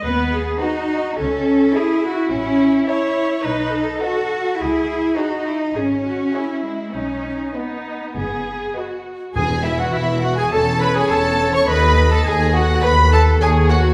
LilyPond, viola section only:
\new Staff \with { instrumentName = "Viola section" } { \time 4/4 \key b \mixolydian \tempo 4 = 104 b'8 gis'8 fis'4 a'4 gis'8 fis'8 | e'4 cis''4 b'8 a'4. | gis'4 fis'8 e'8 gis'8 fis'8 e'4 | dis'4 dis'4 gis'4 fis'4 |
gis'8 e'16 fis'16 e'8 fis'16 gis'16 a'8 b'16 gis'16 a'8. cis''16 | b'8. a'16 gis'8 fis'8 b'8 a'8 gis'8 fis'8 | }